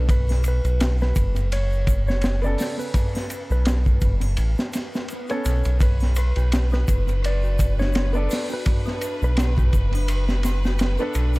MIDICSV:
0, 0, Header, 1, 8, 480
1, 0, Start_track
1, 0, Key_signature, 2, "minor"
1, 0, Tempo, 714286
1, 59, Time_signature, 4, 2, 24, 8
1, 7654, End_track
2, 0, Start_track
2, 0, Title_t, "Electric slide guitar"
2, 0, Program_c, 0, 29
2, 70, Note_on_c, 0, 71, 98
2, 284, Note_off_c, 0, 71, 0
2, 322, Note_on_c, 0, 71, 91
2, 646, Note_off_c, 0, 71, 0
2, 686, Note_on_c, 0, 71, 93
2, 993, Note_off_c, 0, 71, 0
2, 1027, Note_on_c, 0, 73, 90
2, 1358, Note_off_c, 0, 73, 0
2, 1401, Note_on_c, 0, 73, 89
2, 1611, Note_off_c, 0, 73, 0
2, 1642, Note_on_c, 0, 74, 86
2, 1851, Note_off_c, 0, 74, 0
2, 1877, Note_on_c, 0, 71, 92
2, 2302, Note_off_c, 0, 71, 0
2, 2365, Note_on_c, 0, 71, 95
2, 2786, Note_off_c, 0, 71, 0
2, 3566, Note_on_c, 0, 73, 98
2, 3874, Note_off_c, 0, 73, 0
2, 3915, Note_on_c, 0, 71, 97
2, 4126, Note_off_c, 0, 71, 0
2, 4155, Note_on_c, 0, 71, 89
2, 4482, Note_off_c, 0, 71, 0
2, 4528, Note_on_c, 0, 71, 92
2, 4834, Note_off_c, 0, 71, 0
2, 4876, Note_on_c, 0, 74, 89
2, 5203, Note_off_c, 0, 74, 0
2, 5237, Note_on_c, 0, 73, 82
2, 5449, Note_off_c, 0, 73, 0
2, 5487, Note_on_c, 0, 74, 94
2, 5694, Note_off_c, 0, 74, 0
2, 5736, Note_on_c, 0, 71, 101
2, 6151, Note_off_c, 0, 71, 0
2, 6210, Note_on_c, 0, 71, 103
2, 6628, Note_off_c, 0, 71, 0
2, 7409, Note_on_c, 0, 71, 97
2, 7654, Note_off_c, 0, 71, 0
2, 7654, End_track
3, 0, Start_track
3, 0, Title_t, "Synth bell"
3, 0, Program_c, 1, 98
3, 3903, Note_on_c, 1, 71, 78
3, 4030, Note_off_c, 1, 71, 0
3, 4036, Control_c, 1, 64, 127
3, 4146, Note_on_c, 1, 71, 102
3, 4220, Note_off_c, 1, 71, 0
3, 4277, Note_on_c, 1, 66, 72
3, 4502, Note_off_c, 1, 66, 0
3, 4516, Note_on_c, 1, 62, 69
3, 4609, Note_off_c, 1, 62, 0
3, 4622, Note_on_c, 1, 71, 71
3, 4749, Note_off_c, 1, 71, 0
3, 4855, Note_on_c, 1, 71, 106
3, 4934, Note_off_c, 1, 71, 0
3, 4999, Note_on_c, 1, 66, 70
3, 5223, Note_off_c, 1, 66, 0
3, 5235, Note_on_c, 1, 62, 76
3, 5329, Note_off_c, 1, 62, 0
3, 5333, Note_on_c, 1, 71, 78
3, 5465, Note_off_c, 1, 71, 0
3, 5571, Note_on_c, 1, 71, 102
3, 5653, Note_off_c, 1, 71, 0
3, 5709, Note_on_c, 1, 66, 67
3, 5938, Note_off_c, 1, 66, 0
3, 5950, Note_on_c, 1, 62, 79
3, 6047, Note_off_c, 1, 62, 0
3, 6055, Note_on_c, 1, 71, 74
3, 6186, Note_off_c, 1, 71, 0
3, 6294, Note_on_c, 1, 71, 101
3, 6374, Note_off_c, 1, 71, 0
3, 6437, Note_on_c, 1, 66, 72
3, 6662, Note_off_c, 1, 66, 0
3, 6683, Note_on_c, 1, 62, 68
3, 6773, Note_off_c, 1, 62, 0
3, 6782, Note_on_c, 1, 71, 91
3, 6909, Note_off_c, 1, 71, 0
3, 7021, Note_on_c, 1, 71, 103
3, 7097, Note_off_c, 1, 71, 0
3, 7156, Note_on_c, 1, 66, 75
3, 7382, Note_off_c, 1, 66, 0
3, 7392, Note_on_c, 1, 62, 74
3, 7487, Note_off_c, 1, 62, 0
3, 7495, Note_on_c, 1, 71, 74
3, 7626, Note_off_c, 1, 71, 0
3, 7654, End_track
4, 0, Start_track
4, 0, Title_t, "Violin section"
4, 0, Program_c, 2, 48
4, 3901, Note_on_c, 2, 71, 80
4, 7654, Note_off_c, 2, 71, 0
4, 7654, End_track
5, 0, Start_track
5, 0, Title_t, "Upright piano"
5, 0, Program_c, 3, 0
5, 1625, Note_on_c, 3, 59, 89
5, 1639, Note_on_c, 3, 49, 81
5, 1655, Note_on_c, 3, 69, 99
5, 3517, Note_off_c, 3, 59, 0
5, 3524, Note_off_c, 3, 49, 0
5, 3532, Note_off_c, 3, 69, 0
5, 3559, Note_on_c, 3, 59, 88
5, 3564, Note_on_c, 3, 61, 74
5, 3569, Note_on_c, 3, 69, 98
5, 3889, Note_off_c, 3, 59, 0
5, 3891, Note_off_c, 3, 61, 0
5, 3894, Note_off_c, 3, 69, 0
5, 5463, Note_on_c, 3, 59, 88
5, 5476, Note_on_c, 3, 62, 84
5, 5488, Note_on_c, 3, 69, 98
5, 7356, Note_off_c, 3, 59, 0
5, 7363, Note_off_c, 3, 62, 0
5, 7369, Note_off_c, 3, 69, 0
5, 7386, Note_on_c, 3, 59, 85
5, 7394, Note_on_c, 3, 62, 84
5, 7402, Note_on_c, 3, 69, 102
5, 7654, Note_off_c, 3, 59, 0
5, 7654, Note_off_c, 3, 62, 0
5, 7654, Note_off_c, 3, 69, 0
5, 7654, End_track
6, 0, Start_track
6, 0, Title_t, "Analog synth bass"
6, 0, Program_c, 4, 38
6, 0, Note_on_c, 4, 35, 87
6, 407, Note_off_c, 4, 35, 0
6, 432, Note_on_c, 4, 35, 103
6, 758, Note_off_c, 4, 35, 0
6, 782, Note_on_c, 4, 30, 90
6, 1720, Note_off_c, 4, 30, 0
6, 2354, Note_on_c, 4, 35, 100
6, 2679, Note_off_c, 4, 35, 0
6, 2701, Note_on_c, 4, 30, 88
6, 2937, Note_off_c, 4, 30, 0
6, 2941, Note_on_c, 4, 33, 91
6, 3059, Note_off_c, 4, 33, 0
6, 3665, Note_on_c, 4, 35, 76
6, 3781, Note_off_c, 4, 35, 0
6, 3800, Note_on_c, 4, 35, 83
6, 4251, Note_off_c, 4, 35, 0
6, 4277, Note_on_c, 4, 35, 102
6, 4600, Note_off_c, 4, 35, 0
6, 4626, Note_on_c, 4, 30, 92
6, 5562, Note_off_c, 4, 30, 0
6, 6196, Note_on_c, 4, 35, 110
6, 6520, Note_off_c, 4, 35, 0
6, 6542, Note_on_c, 4, 30, 89
6, 7251, Note_off_c, 4, 30, 0
6, 7255, Note_on_c, 4, 30, 96
6, 7377, Note_off_c, 4, 30, 0
6, 7493, Note_on_c, 4, 35, 88
6, 7654, Note_off_c, 4, 35, 0
6, 7654, End_track
7, 0, Start_track
7, 0, Title_t, "Swell"
7, 0, Program_c, 5, 103
7, 2940, Note_on_c, 5, 60, 63
7, 3899, Note_off_c, 5, 60, 0
7, 7654, End_track
8, 0, Start_track
8, 0, Title_t, "Drums"
8, 59, Note_on_c, 9, 36, 104
8, 60, Note_on_c, 9, 51, 87
8, 61, Note_on_c, 9, 82, 47
8, 126, Note_off_c, 9, 36, 0
8, 127, Note_off_c, 9, 51, 0
8, 128, Note_off_c, 9, 82, 0
8, 195, Note_on_c, 9, 82, 20
8, 196, Note_on_c, 9, 81, 61
8, 205, Note_on_c, 9, 38, 35
8, 262, Note_off_c, 9, 82, 0
8, 263, Note_off_c, 9, 81, 0
8, 272, Note_off_c, 9, 38, 0
8, 294, Note_on_c, 9, 51, 59
8, 295, Note_on_c, 9, 82, 84
8, 361, Note_off_c, 9, 51, 0
8, 362, Note_off_c, 9, 82, 0
8, 434, Note_on_c, 9, 51, 41
8, 437, Note_on_c, 9, 82, 39
8, 501, Note_off_c, 9, 51, 0
8, 504, Note_off_c, 9, 82, 0
8, 540, Note_on_c, 9, 51, 87
8, 540, Note_on_c, 9, 82, 46
8, 545, Note_on_c, 9, 38, 116
8, 607, Note_off_c, 9, 51, 0
8, 608, Note_off_c, 9, 82, 0
8, 613, Note_off_c, 9, 38, 0
8, 675, Note_on_c, 9, 82, 22
8, 686, Note_on_c, 9, 38, 43
8, 743, Note_off_c, 9, 82, 0
8, 753, Note_off_c, 9, 38, 0
8, 775, Note_on_c, 9, 82, 86
8, 779, Note_on_c, 9, 36, 88
8, 780, Note_on_c, 9, 51, 68
8, 842, Note_off_c, 9, 82, 0
8, 846, Note_off_c, 9, 36, 0
8, 848, Note_off_c, 9, 51, 0
8, 914, Note_on_c, 9, 82, 37
8, 915, Note_on_c, 9, 51, 44
8, 981, Note_off_c, 9, 82, 0
8, 982, Note_off_c, 9, 51, 0
8, 1021, Note_on_c, 9, 51, 85
8, 1021, Note_on_c, 9, 82, 46
8, 1088, Note_off_c, 9, 51, 0
8, 1089, Note_off_c, 9, 82, 0
8, 1159, Note_on_c, 9, 82, 24
8, 1227, Note_off_c, 9, 82, 0
8, 1256, Note_on_c, 9, 51, 65
8, 1258, Note_on_c, 9, 36, 89
8, 1265, Note_on_c, 9, 82, 86
8, 1324, Note_off_c, 9, 51, 0
8, 1325, Note_off_c, 9, 36, 0
8, 1332, Note_off_c, 9, 82, 0
8, 1398, Note_on_c, 9, 82, 33
8, 1410, Note_on_c, 9, 38, 49
8, 1465, Note_off_c, 9, 82, 0
8, 1477, Note_off_c, 9, 38, 0
8, 1488, Note_on_c, 9, 51, 78
8, 1499, Note_on_c, 9, 82, 51
8, 1505, Note_on_c, 9, 38, 101
8, 1555, Note_off_c, 9, 51, 0
8, 1566, Note_off_c, 9, 82, 0
8, 1572, Note_off_c, 9, 38, 0
8, 1637, Note_on_c, 9, 82, 26
8, 1705, Note_off_c, 9, 82, 0
8, 1734, Note_on_c, 9, 46, 75
8, 1743, Note_on_c, 9, 82, 86
8, 1751, Note_on_c, 9, 38, 54
8, 1802, Note_off_c, 9, 46, 0
8, 1811, Note_off_c, 9, 82, 0
8, 1819, Note_off_c, 9, 38, 0
8, 1881, Note_on_c, 9, 82, 41
8, 1949, Note_off_c, 9, 82, 0
8, 1975, Note_on_c, 9, 51, 89
8, 1977, Note_on_c, 9, 36, 112
8, 1983, Note_on_c, 9, 82, 51
8, 2042, Note_off_c, 9, 51, 0
8, 2045, Note_off_c, 9, 36, 0
8, 2050, Note_off_c, 9, 82, 0
8, 2118, Note_on_c, 9, 81, 61
8, 2122, Note_on_c, 9, 82, 22
8, 2127, Note_on_c, 9, 38, 47
8, 2185, Note_off_c, 9, 81, 0
8, 2189, Note_off_c, 9, 82, 0
8, 2194, Note_off_c, 9, 38, 0
8, 2217, Note_on_c, 9, 51, 62
8, 2219, Note_on_c, 9, 82, 92
8, 2284, Note_off_c, 9, 51, 0
8, 2286, Note_off_c, 9, 82, 0
8, 2356, Note_on_c, 9, 82, 39
8, 2424, Note_off_c, 9, 82, 0
8, 2455, Note_on_c, 9, 51, 85
8, 2464, Note_on_c, 9, 38, 108
8, 2467, Note_on_c, 9, 82, 54
8, 2522, Note_off_c, 9, 51, 0
8, 2531, Note_off_c, 9, 38, 0
8, 2534, Note_off_c, 9, 82, 0
8, 2596, Note_on_c, 9, 36, 82
8, 2596, Note_on_c, 9, 82, 22
8, 2663, Note_off_c, 9, 36, 0
8, 2663, Note_off_c, 9, 82, 0
8, 2695, Note_on_c, 9, 82, 78
8, 2698, Note_on_c, 9, 51, 69
8, 2699, Note_on_c, 9, 36, 98
8, 2762, Note_off_c, 9, 82, 0
8, 2765, Note_off_c, 9, 51, 0
8, 2767, Note_off_c, 9, 36, 0
8, 2831, Note_on_c, 9, 51, 46
8, 2831, Note_on_c, 9, 81, 64
8, 2832, Note_on_c, 9, 82, 36
8, 2898, Note_off_c, 9, 51, 0
8, 2899, Note_off_c, 9, 81, 0
8, 2899, Note_off_c, 9, 82, 0
8, 2935, Note_on_c, 9, 51, 81
8, 2937, Note_on_c, 9, 82, 48
8, 3002, Note_off_c, 9, 51, 0
8, 3004, Note_off_c, 9, 82, 0
8, 3077, Note_on_c, 9, 82, 24
8, 3084, Note_on_c, 9, 38, 60
8, 3145, Note_off_c, 9, 82, 0
8, 3151, Note_off_c, 9, 38, 0
8, 3180, Note_on_c, 9, 51, 75
8, 3180, Note_on_c, 9, 82, 81
8, 3194, Note_on_c, 9, 38, 46
8, 3247, Note_off_c, 9, 51, 0
8, 3247, Note_off_c, 9, 82, 0
8, 3261, Note_off_c, 9, 38, 0
8, 3321, Note_on_c, 9, 82, 32
8, 3328, Note_on_c, 9, 38, 49
8, 3388, Note_off_c, 9, 82, 0
8, 3395, Note_off_c, 9, 38, 0
8, 3416, Note_on_c, 9, 51, 56
8, 3426, Note_on_c, 9, 82, 54
8, 3483, Note_off_c, 9, 51, 0
8, 3493, Note_off_c, 9, 82, 0
8, 3555, Note_on_c, 9, 82, 25
8, 3558, Note_on_c, 9, 51, 41
8, 3622, Note_off_c, 9, 82, 0
8, 3625, Note_off_c, 9, 51, 0
8, 3661, Note_on_c, 9, 82, 85
8, 3666, Note_on_c, 9, 51, 61
8, 3729, Note_off_c, 9, 82, 0
8, 3733, Note_off_c, 9, 51, 0
8, 3790, Note_on_c, 9, 82, 40
8, 3798, Note_on_c, 9, 51, 50
8, 3857, Note_off_c, 9, 82, 0
8, 3865, Note_off_c, 9, 51, 0
8, 3898, Note_on_c, 9, 82, 56
8, 3901, Note_on_c, 9, 36, 102
8, 3906, Note_on_c, 9, 51, 86
8, 3965, Note_off_c, 9, 82, 0
8, 3968, Note_off_c, 9, 36, 0
8, 3973, Note_off_c, 9, 51, 0
8, 4034, Note_on_c, 9, 82, 21
8, 4035, Note_on_c, 9, 81, 50
8, 4048, Note_on_c, 9, 38, 34
8, 4101, Note_off_c, 9, 82, 0
8, 4102, Note_off_c, 9, 81, 0
8, 4115, Note_off_c, 9, 38, 0
8, 4134, Note_on_c, 9, 82, 88
8, 4141, Note_on_c, 9, 51, 72
8, 4201, Note_off_c, 9, 82, 0
8, 4208, Note_off_c, 9, 51, 0
8, 4272, Note_on_c, 9, 51, 43
8, 4287, Note_on_c, 9, 82, 35
8, 4339, Note_off_c, 9, 51, 0
8, 4354, Note_off_c, 9, 82, 0
8, 4381, Note_on_c, 9, 51, 87
8, 4385, Note_on_c, 9, 82, 53
8, 4391, Note_on_c, 9, 38, 118
8, 4448, Note_off_c, 9, 51, 0
8, 4452, Note_off_c, 9, 82, 0
8, 4458, Note_off_c, 9, 38, 0
8, 4516, Note_on_c, 9, 82, 23
8, 4525, Note_on_c, 9, 38, 45
8, 4583, Note_off_c, 9, 82, 0
8, 4592, Note_off_c, 9, 38, 0
8, 4622, Note_on_c, 9, 82, 97
8, 4624, Note_on_c, 9, 36, 94
8, 4626, Note_on_c, 9, 51, 68
8, 4689, Note_off_c, 9, 82, 0
8, 4691, Note_off_c, 9, 36, 0
8, 4693, Note_off_c, 9, 51, 0
8, 4758, Note_on_c, 9, 82, 38
8, 4763, Note_on_c, 9, 51, 39
8, 4825, Note_off_c, 9, 82, 0
8, 4830, Note_off_c, 9, 51, 0
8, 4867, Note_on_c, 9, 51, 89
8, 4868, Note_on_c, 9, 82, 47
8, 4934, Note_off_c, 9, 51, 0
8, 4935, Note_off_c, 9, 82, 0
8, 5001, Note_on_c, 9, 82, 26
8, 5068, Note_off_c, 9, 82, 0
8, 5100, Note_on_c, 9, 82, 96
8, 5102, Note_on_c, 9, 36, 85
8, 5105, Note_on_c, 9, 51, 68
8, 5167, Note_off_c, 9, 82, 0
8, 5169, Note_off_c, 9, 36, 0
8, 5173, Note_off_c, 9, 51, 0
8, 5235, Note_on_c, 9, 82, 36
8, 5249, Note_on_c, 9, 38, 45
8, 5302, Note_off_c, 9, 82, 0
8, 5316, Note_off_c, 9, 38, 0
8, 5329, Note_on_c, 9, 82, 53
8, 5343, Note_on_c, 9, 51, 73
8, 5347, Note_on_c, 9, 38, 98
8, 5396, Note_off_c, 9, 82, 0
8, 5410, Note_off_c, 9, 51, 0
8, 5415, Note_off_c, 9, 38, 0
8, 5470, Note_on_c, 9, 82, 24
8, 5537, Note_off_c, 9, 82, 0
8, 5578, Note_on_c, 9, 82, 94
8, 5583, Note_on_c, 9, 46, 89
8, 5597, Note_on_c, 9, 38, 52
8, 5645, Note_off_c, 9, 82, 0
8, 5650, Note_off_c, 9, 46, 0
8, 5664, Note_off_c, 9, 38, 0
8, 5705, Note_on_c, 9, 82, 38
8, 5772, Note_off_c, 9, 82, 0
8, 5812, Note_on_c, 9, 82, 54
8, 5818, Note_on_c, 9, 51, 80
8, 5822, Note_on_c, 9, 36, 123
8, 5879, Note_off_c, 9, 82, 0
8, 5885, Note_off_c, 9, 51, 0
8, 5889, Note_off_c, 9, 36, 0
8, 5949, Note_on_c, 9, 82, 24
8, 5964, Note_on_c, 9, 38, 41
8, 6016, Note_off_c, 9, 82, 0
8, 6032, Note_off_c, 9, 38, 0
8, 6057, Note_on_c, 9, 51, 65
8, 6060, Note_on_c, 9, 82, 96
8, 6124, Note_off_c, 9, 51, 0
8, 6128, Note_off_c, 9, 82, 0
8, 6198, Note_on_c, 9, 82, 43
8, 6266, Note_off_c, 9, 82, 0
8, 6294, Note_on_c, 9, 51, 85
8, 6301, Note_on_c, 9, 38, 121
8, 6310, Note_on_c, 9, 82, 50
8, 6361, Note_off_c, 9, 51, 0
8, 6368, Note_off_c, 9, 38, 0
8, 6377, Note_off_c, 9, 82, 0
8, 6436, Note_on_c, 9, 36, 100
8, 6440, Note_on_c, 9, 82, 26
8, 6503, Note_off_c, 9, 36, 0
8, 6507, Note_off_c, 9, 82, 0
8, 6536, Note_on_c, 9, 51, 62
8, 6539, Note_on_c, 9, 36, 91
8, 6542, Note_on_c, 9, 82, 86
8, 6603, Note_off_c, 9, 51, 0
8, 6606, Note_off_c, 9, 36, 0
8, 6609, Note_off_c, 9, 82, 0
8, 6670, Note_on_c, 9, 51, 46
8, 6682, Note_on_c, 9, 82, 35
8, 6686, Note_on_c, 9, 81, 66
8, 6737, Note_off_c, 9, 51, 0
8, 6749, Note_off_c, 9, 82, 0
8, 6753, Note_off_c, 9, 81, 0
8, 6775, Note_on_c, 9, 51, 96
8, 6776, Note_on_c, 9, 82, 54
8, 6842, Note_off_c, 9, 51, 0
8, 6843, Note_off_c, 9, 82, 0
8, 6912, Note_on_c, 9, 38, 54
8, 6913, Note_on_c, 9, 82, 25
8, 6979, Note_off_c, 9, 38, 0
8, 6980, Note_off_c, 9, 82, 0
8, 7009, Note_on_c, 9, 51, 67
8, 7019, Note_on_c, 9, 82, 104
8, 7020, Note_on_c, 9, 38, 45
8, 7076, Note_off_c, 9, 51, 0
8, 7086, Note_off_c, 9, 82, 0
8, 7087, Note_off_c, 9, 38, 0
8, 7152, Note_on_c, 9, 82, 35
8, 7158, Note_on_c, 9, 38, 49
8, 7219, Note_off_c, 9, 82, 0
8, 7226, Note_off_c, 9, 38, 0
8, 7247, Note_on_c, 9, 82, 44
8, 7251, Note_on_c, 9, 51, 85
8, 7265, Note_on_c, 9, 38, 110
8, 7314, Note_off_c, 9, 82, 0
8, 7318, Note_off_c, 9, 51, 0
8, 7332, Note_off_c, 9, 38, 0
8, 7379, Note_on_c, 9, 82, 26
8, 7447, Note_off_c, 9, 82, 0
8, 7486, Note_on_c, 9, 82, 88
8, 7493, Note_on_c, 9, 51, 72
8, 7553, Note_off_c, 9, 82, 0
8, 7560, Note_off_c, 9, 51, 0
8, 7619, Note_on_c, 9, 82, 44
8, 7631, Note_on_c, 9, 51, 43
8, 7654, Note_off_c, 9, 51, 0
8, 7654, Note_off_c, 9, 82, 0
8, 7654, End_track
0, 0, End_of_file